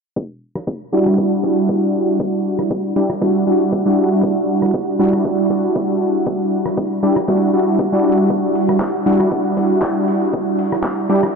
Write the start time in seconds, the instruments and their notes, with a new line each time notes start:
0.16 kick
0.55 cross-stick
0.67 kick
0.92 synth keys G3 D4 E4 F#4
1.06 cross-stick
1.18 kick
1.43 synth keys G3 D4 E4 F#4, kick
1.69 kick
2.20 kick
2.59 cross-stick
2.71 kick
2.96 synth keys G3 D4 E4 G4
3.10 cross-stick
3.21 synth keys G3 D4 E4 F#4, kick
3.47 synth keys G3 D4 E4 F#4
3.72 kick
3.86 synth keys G3 D4 E4 F#4
4.23 kick
4.62 cross-stick
4.74 kick
4.99 synth keys G3 D4 E4 F#4
5.13 cross-stick
5.25 kick
5.50 synth keys G3 D4 E4 F#4, kick
5.76 kick
6.26 kick
6.66 cross-stick
6.77 kick
7.03 synth keys G3 D4 E4 G4
7.16 cross-stick
7.28 synth keys G3 D4 E4 F#4, kick
7.53 synth keys G3 D4 E4 F#4
7.79 kick
7.92 synth keys G3 D4 E4 F#4
8.30 kick
8.55 open hi-hat
8.69 cross-stick
8.80 kick, clap
9.06 synth keys G3 D4 E4 F#4, open hi-hat
9.20 cross-stick
9.32 kick
9.57 synth keys G3 D4 E4 F#4, kick, open hi-hat
9.82 kick, clap
10.08 open hi-hat
10.33 kick
10.59 open hi-hat
10.72 cross-stick
10.84 kick, clap
11.09 synth keys G3 D4 E4 G4, open hi-hat
11.23 cross-stick